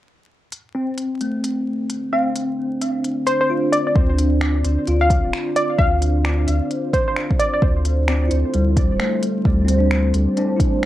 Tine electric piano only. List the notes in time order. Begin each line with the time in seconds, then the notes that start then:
0.75 C4
1.21 A3
2.13 C4
3.50 F4
3.96 C4
4.88 F4
8.08 C4
8.28 E4
8.54 G3
9.00 A3
9.46 G3
9.65 C4
9.79 D4
10.37 C4 D4
10.56 E4